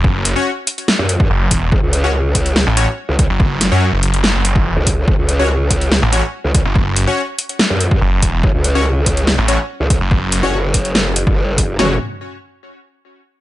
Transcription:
<<
  \new Staff \with { instrumentName = "Supersaw synth" } { \time 4/4 \key fis \phrygian \tempo 4 = 143 r8. <cis' fis' cis''>16 r2. | r8. <cis' fis' cis''>16 r4. <cis' fis' cis''>16 r4 r16 | r8. <cis' fis' cis''>16 r2. | r8. <cis' fis' cis''>16 r4. <cis' fis' cis''>16 r4 r16 |
r8. <cis' fis' cis''>16 r2. | r8. <cis' fis' cis''>16 r4. <cis' fis' cis''>16 r4 r16 | r8. <cis' fis' cis''>16 r2. | <cis' fis' cis''>8 r2. r8 | }
  \new Staff \with { instrumentName = "Wobble bass" } { \clef bass \time 4/4 \key fis \phrygian r2 r16 fis,8. r4 | fis,,16 cis,2 r4 cis,8 r16 | r2. r16 cis,8. | fis,,16 cis,2 r4 cis,8 r16 |
r2 r16 fis,8. r4 | fis,,16 cis,2 r4 cis,8 r16 | r8. fis,,2 g,,4~ g,,16 | fis,,8 r2. r8 | }
  \new Staff \with { instrumentName = "Detuned saw bass" } { \clef bass \time 4/4 \key fis \phrygian fis,,8. r2 r16 fis,,8 e,,8 | r2 r16 a,,8 r4 fis,,16~ | fis,,8. fis,8 fis,,4 fis,,4 r8. | r2 r16 a,,8 r4 fis,,16~ |
fis,,8. r2 r16 fis,,8 e,,8 | r2 r16 a,,8 r4 fis,,16~ | fis,,8. r2. r16 | r1 | }
  \new DrumStaff \with { instrumentName = "Drums" } \drummode { \time 4/4 bd8 hh8 r8 hh16 hh16 sn8 hh16 bd16 r8 <hh bd>8 | bd8 hh8 r8 <hh bd>16 hh16 sn8 hh8 r8 <hh bd>8 | bd8 <hh sn>8 r8 hh16 hh16 sn8 hh16 bd16 r8 <hh bd>8 | bd8 hh8 r8 <hh bd>16 hh16 sn8 hh8 r8 <hh bd>8 |
bd8 hh8 r8 hh16 hh16 sn8 hh16 bd16 r8 <hh bd>8 | bd8 hh8 r8 <hh bd>16 hh16 sn8 hh8 r8 <hh bd>8 | bd8 hh8 r8 <hh bd>16 hh16 sn8 hh16 bd16 r8 <hh bd>8 | <sn tomfh>4 r4 r4 r4 | }
>>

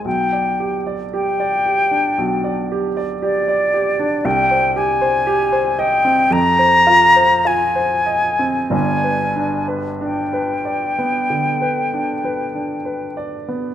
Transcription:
<<
  \new Staff \with { instrumentName = "Flute" } { \time 4/4 \key g \phrygian \tempo 4 = 55 g''8. r16 g''4. r8 d''4 | g''8 aes''4 g''8 bes''4 aes''4 | aes''8. r16 g''2~ g''8 r8 | }
  \new Staff \with { instrumentName = "Grand piano" } { \time 4/4 \key g \phrygian b,,16 d''16 g'16 d''16 g'16 d''16 g'16 d'16 b,,16 d''16 g'16 d''16 g'16 d''16 g'16 d'16 | c,16 c''16 g'16 c''16 g'16 c''16 ees''16 c'16 f,16 c''16 f'16 c''16 f'16 c''16 ees''16 c'16 | <g,, g,>16 b'16 d'16 b'16 d'16 b'16 d''16 b16 d16 b'16 d'16 b'16 d'16 b'16 d''16 b16 | }
>>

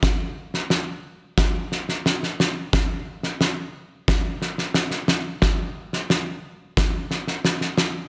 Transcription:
\new DrumStaff \with { instrumentName = "Drums" } \drummode { \time 4/4 \tempo 4 = 89 <bd sn>8. sn16 sn4 <bd sn>8 sn16 sn16 sn16 sn16 sn8 | <bd sn>8. sn16 sn4 <bd sn>8 sn16 sn16 sn16 sn16 sn8 | <bd sn>8. sn16 sn4 <bd sn>8 sn16 sn16 sn16 sn16 sn8 | }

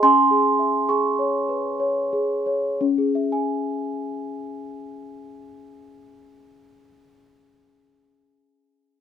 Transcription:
\new Staff \with { instrumentName = "Celesta" } { \time 3/4 \key cis \minor \tempo 4 = 58 << { <gis'' bis''>4 <gis'' cis'''>4. r8 | <cis' gis' e'' gis''>2.~ | <cis' gis' e'' gis''>2. | } \\ { \tuplet 3/2 { cis'8 gis'8 e''8 gis'8 cis''8 b'8 cis''8 gis'8 cis''8 } | r2. | r2. | } >> }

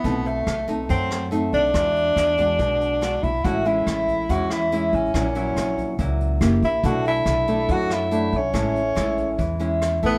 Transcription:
<<
  \new Staff \with { instrumentName = "Tenor saxophone" } { \time 4/4 \key a \major \tempo 4 = 141 b8 a4 r8 c'4 r8 d'8~ | d'2.~ d'8 e'8 | fis'8 e'4. fis'8 e'4 cis'8~ | cis'2~ cis'8 r4 e'8 |
fis'8 e'4. fis'8 e'4 cis'8~ | cis'2~ cis'8 r4 b8 | }
  \new Staff \with { instrumentName = "Nylon-string guitar" } { \time 4/4 \key a \major << { <a c' dis'>4 r8 <a c' dis'>4. <a c' dis'>4 | <gis d' fis'>4. <gis d' fis'>4. <gis d' fis'>8 r8 | <gis cis' e'>8 <gis cis' e'>4. <gis cis' e'>4 <gis cis' e'>4 | <fis cis' e'>8 <fis cis' e'>4. <fis cis' e'>4 <ais e' g'>4 |
<a d' e'>4. <a d' e'>4. <a d' e'>8 r8 | <gis cis' e'>8 r8 <gis cis' e'>4. <gis cis' e'>4 <a e'>8 | } \\ { b,2 fis2 | e2 b,2 | a,2 e2 | ais,2 ais,4 r4 |
b,2 fis2 | a,2 e2 | } >> }
  \new Staff \with { instrumentName = "Upright bass" } { \clef bass \time 4/4 \key a \major b,,4 b,,4 fis,4. b,,8 | e,4 e,4 b,,4. b,,8 | a,,4 a,,4 e,4. a,,8 | ais,,4 ais,,4 cis,4 fis,,8 ais,,8 |
b,,4 b,,4 fis,4. b,,8 | a,,4 a,,4 e,4. a,,8 | }
  \new DrumStaff \with { instrumentName = "Drums" } \drummode { \time 4/4 <hh bd>8 hh8 <hh ss>8 <hh bd>8 <hh bd>8 <hh ss>8 hh8 <hh bd>8 | <hh bd ss>8 hh8 <hh ss>8 <hh bd>8 <hh bd>8 hh8 <hh ss>8 <hh bd>8 | <hh bd>8 hh8 <hh ss>8 <hh bd>8 <hh bd>8 <hh ss>8 hh8 <hh bd>8 | <hh bd ss>8 hh8 <hh ss>8 <hh bd>8 <hh bd>8 hh8 <hh ss>8 <hh bd>8 |
<hh bd>8 hh8 <hh ss>8 <hh bd>8 <hh bd>8 <hh ss>8 hh8 <hh bd>8 | <hh bd ss>8 hh8 <hh ss>8 <hh bd>8 <hh bd>8 hh8 <hh ss>8 <hh bd>8 | }
>>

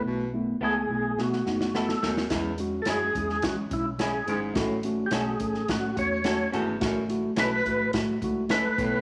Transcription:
<<
  \new Staff \with { instrumentName = "Tonewheel organ" } { \time 4/4 \key fis \dorian \tempo 4 = 106 r4 gis'4 fis'4 a'8. r16 | r8. r32 a'32 gis'4 fis'8 e'8 gis'8. r16 | r8. r32 g'32 gis'4 fis'8 cis''4 r8 | r4 b'4 r4 b'4 | }
  \new Staff \with { instrumentName = "Clean electric guitar" } { \time 4/4 \key fis \dorian r4 <b e' a'>8 r4. <b e' a'>8 r8 | r4 <cis' e' gis'>8 r4. <cis' e' gis'>8 r8 | r4 <cis' fis' a'>8 r4. <cis' fis' a'>8 <cis' fis' a'>8 | r4 <cis' e' a'>8 r4. <cis' e' a'>8 r8 | }
  \new Staff \with { instrumentName = "Tine electric piano" } { \time 4/4 \key fis \dorian <a b e'>8 <a b e'>8 <a b e'>8 <a b e'>8 <a b e'>8 <a b dis'>8 <a b fis'>8 <a b e'>8 | <gis cis' e'>8 <gis cis' fis'>8 <gis cis' fis'>8 <gis cis' e'>8 <gis cis' e'>8 <gis cis' e'>8 <gis cis' e'>8 <gis cis' e'>8 | <a cis' fis'>8 <a cis' fis'>8 <a cis' fis'>8 <a cis' a'>8 <a cis' fis'>8 <a cis' fis'>8 <a cis' fis'>8 <a cis' fis'>8 | <a e' fis'>8 <a e' fis'>8 <a e' fis'>8 <a e' fis'>8 <a e' fis'>8 <a e' fis'>8 <a e' a'>8 <a b e'>8 | }
  \new Staff \with { instrumentName = "Baritone saxophone" } { \clef bass \time 4/4 \key fis \dorian b,8 r2. fis,8 | e,8 r2. gis,8 | a,8 r2. e,8 | fis,8 r2. a,8 | }
  \new Staff \with { instrumentName = "Fingered electric bass" } { \clef bass \time 4/4 \key fis \dorian b,,4 cis,8 b,,8 b,8 fis,,4 dis,8 | e,4 fis,8 e,8 e8 b,,4 gis,,8 | a,,4 b,,8 a,,8 a,8 e,4 gis,,8 | a,,4 b,,8 a,,8 a,8 cis,4 b,,8 | }
  \new DrumStaff \with { instrumentName = "Drums" } \drummode { \time 4/4 r4 r4 sn16 sn16 sn16 sn16 sn16 sn16 sn16 sn16 | <hh bd sn>8 hh8 <hh sn>8 <hh bd>16 sn16 <hh bd sn>8 <hh bd>8 <hh sn>8 hh8 | <hh bd sn>8 hh8 <hh sn>8 <hh bd>16 sn16 <hh bd sn>8 <hh bd>8 <hh sn>8 hh8 | <hh bd sn>8 hh8 <hh sn>8 <hh bd>8 <hh bd sn>8 <hh bd>8 <hh sn>8 <hh bd>8 | }
>>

